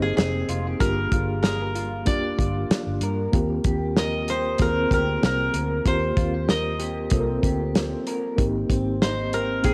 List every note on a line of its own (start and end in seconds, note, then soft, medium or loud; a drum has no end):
0.00 0.11 G1 medium
0.00 0.81 G#3 medium
0.00 0.79 A#3 medium
0.00 0.16 C4 medium
0.00 0.83 C4 medium
0.00 0.83 D#4 medium
0.00 0.88 D#4 medium
0.00 0.49 G4 medium
0.00 0.82 G4 medium
0.00 0.17 G#4 medium
0.00 0.80 A#4 medium
0.00 0.64 C5 medium
0.17 0.43 F1 medium
0.17 0.88 C4 medium
0.17 2.14 G#4 medium
0.17 snare loud
0.17 closed hi-hat medium
0.48 0.74 F1 medium
0.48 0.67 F4 medium
0.48 closed hi-hat medium
0.67 0.88 G4 medium
0.79 1.06 G1 medium
0.79 4.31 G3 medium
0.79 1.65 A#3 medium
0.79 1.66 D4 medium
0.79 1.66 F4 medium
0.79 1.66 G4 medium
0.79 1.42 A#4 medium
0.79 kick medium
0.79 closed hi-hat medium
1.12 2.07 G1 medium
1.12 1.74 F4 medium
1.12 kick medium
1.12 closed hi-hat medium
1.43 1.62 G#4 medium
1.43 3.27 A#4 medium
1.43 snare loud
1.43 closed hi-hat medium
1.62 3.02 A#4 medium
1.75 2.38 F4 medium
1.75 closed hi-hat medium
2.05 2.32 F1 medium
2.05 2.91 A#3 medium
2.05 2.91 D4 medium
2.05 2.70 D4 medium
2.05 2.92 F4 medium
2.05 2.92 G4 medium
2.05 3.67 D5 medium
2.05 kick medium
2.05 closed hi-hat medium
2.38 2.64 G1 medium
2.38 3.40 F4 medium
2.38 kick medium
2.38 closed hi-hat medium
2.70 3.40 D4 medium
2.70 muted fingered electric bass stroke soft
2.70 snare loud
2.70 closed hi-hat medium
2.86 2.98 G1 medium
3.01 3.26 G2 medium
3.01 3.97 A#4 medium
3.01 closed hi-hat medium
3.32 3.58 D#2 medium
3.32 4.17 A#3 medium
3.32 4.18 C4 medium
3.32 4.18 F4 medium
3.32 4.19 G4 medium
3.32 kick loud
3.32 closed hi-hat medium
3.64 4.55 D#2 medium
3.64 4.28 G4 medium
3.64 kick medium
3.64 closed hi-hat medium
3.97 5.53 A#4 medium
3.97 5.53 D#5 medium
3.97 snare loud
3.97 closed hi-hat medium
4.28 4.91 G4 medium
4.28 5.87 C5 medium
4.28 closed hi-hat medium
4.58 4.85 D#2 medium
4.58 5.44 A#3 medium
4.58 5.44 C4 medium
4.58 5.22 C4 medium
4.58 5.45 F4 medium
4.58 4.67 G#4 medium
4.58 4.93 A#4 medium
4.58 kick medium
4.58 closed hi-hat medium
4.67 5.48 A#4 medium
4.91 5.16 D2 medium
4.91 6.17 G4 medium
4.91 5.25 A#4 medium
4.91 kick medium
4.91 closed hi-hat medium
5.22 5.48 C2 medium
5.22 7.12 C4 medium
5.22 7.09 A#4 medium
5.22 snare loud
5.22 closed hi-hat medium
5.54 5.79 D2 medium
5.54 6.47 A#4 medium
5.54 closed hi-hat medium
5.85 6.11 D#2 medium
5.85 6.71 A#3 medium
5.85 6.71 C4 medium
5.85 6.71 F4 medium
5.85 6.72 G4 medium
5.85 7.59 C5 medium
5.85 kick medium
5.85 closed hi-hat medium
6.17 7.08 D#2 medium
6.17 6.34 F4 medium
6.17 kick medium
6.17 closed hi-hat medium
6.34 6.78 G4 soft
6.48 8.06 A#4 medium
6.48 8.04 D#5 medium
6.48 snare loud
6.48 closed hi-hat medium
6.79 7.44 G4 medium
6.79 closed hi-hat medium
7.10 7.37 C2 medium
7.10 7.97 A#3 medium
7.10 7.97 C4 medium
7.10 7.75 C4 medium
7.10 7.98 F4 medium
7.10 7.20 A4 medium
7.10 kick medium
7.10 closed hi-hat medium
7.20 8.01 A#4 medium
7.43 7.94 D2 medium
7.43 9.02 G4 medium
7.43 kick medium
7.43 closed hi-hat medium
7.75 8.69 C4 medium
7.75 snare loud
7.75 closed hi-hat medium
8.07 8.45 A#4 medium
8.07 closed hi-hat medium
8.36 8.63 G#1 loud
8.36 9.22 A#3 medium
8.36 9.23 C4 medium
8.36 9.23 D#4 medium
8.36 9.24 G4 medium
8.36 kick loud
8.36 closed hi-hat medium
8.69 9.60 G#1 medium
8.69 9.32 C4 medium
8.69 kick medium
8.69 closed hi-hat medium
9.02 9.74 D#4 medium
9.02 9.74 C5 medium
9.02 snare loud
9.02 closed hi-hat medium
9.33 9.74 C4 medium
9.33 9.74 A#4 medium
9.33 closed hi-hat medium
9.63 9.74 A#1 medium
9.63 9.74 A#3 medium
9.63 9.74 C4 medium
9.63 9.74 D#4 medium
9.63 9.74 G#4 medium
9.63 9.74 G5 medium
9.63 kick medium
9.63 closed hi-hat medium